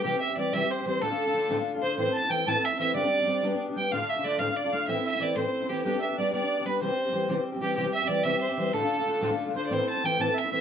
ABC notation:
X:1
M:6/8
L:1/16
Q:3/8=124
K:C
V:1 name="Fiddle"
G2 e2 d2 e2 c2 c2 | A8 z2 c2 | c2 a2 g2 a2 e2 e2 | d8 z2 g2 |
f2 e2 d2 f2 d2 f2 | e2 e2 d2 c4 G2 | G2 e2 d2 d4 B2 | c8 z2 G2 |
G2 e2 d2 e2 c2 c2 | A8 z2 c3/2 d/2 | c2 a2 g2 a2 e2 e2 |]
V:2 name="Harmonica"
G2 e2 d2 e2 c2 c2 | A8 z2 c2 | c2 a2 g2 a2 e2 e2 | d8 z2 g2 |
f2 e2 d2 f2 d2 f2 | e2 e2 d2 c4 G2 | G2 e2 d2 d4 B2 | c8 z2 G2 |
G2 e2 d2 e6 | A8 z2 c2 | c4 g2 a2 e2 e2 |]
V:3 name="Steel-string acoustic guitar"
[C,E,G,CG] [G,CG]2 [G,CG] [E,G,CG]2 [C,E,G,CG] [G,CG]2 [G,CG] [E,G,CG]2 | [D,,A,,D,A,DF] [D,A,DF]2 [D,A,DF] [D,A,DF]2 [D,,A,,D,A,DF] [D,A,DF]2 [D,A,DF] [D,A,DF]2 | [A,,E,A,CE] [A,CE]2 [A,CE] [E,A,CE]2 [A,,E,A,CE] [A,CE]2 [A,CE] [E,A,CE]2 | [G,,D,G,CDG] [G,CDG]2 [G,CDG] [G,CDG]2 [G,B,DG] [B,DG]2 [B,DG] [G,B,DG]2 |
[D,,A,,D,A,DF] [D,A,DF]2 [D,A,DF] [D,A,DF]2 [D,,A,,D,A,DF] [D,A,DF]2 [D,A,DF] [D,A,DF]2 | [A,,E,A,CE] [A,CE]2 [A,CE] [E,A,CE]2 [A,,E,A,CE] [A,CE]2 [A,CE] [E,A,CE]2 | [G,B,DG] [B,DG]2 [B,DG] [G,B,DG]2 [G,B,DG] [B,DG]2 [B,DG] [G,B,DG]2 | [C,E,G,CG] [G,CG]2 [G,CG] [E,G,CG]2 [C,E,G,CG] [G,CG]2 [G,CG] [E,G,CG]2 |
[C,E,G,CG] [G,CG]2 [G,CG] [E,G,CG]2 [C,E,G,CG] [G,CG]2 [G,CG] [E,G,CG]2 | [D,,A,,D,A,DF] [D,A,DF]2 [D,A,DF] [D,A,DF]2 [D,,A,,D,A,DF] [D,A,DF]2 [D,A,DF] [D,A,DF]2 | [A,,E,A,CE] [A,CE]2 [A,CE] [E,A,CE]2 [A,,E,A,CE] [A,CE]2 [A,CE] [E,A,CE]2 |]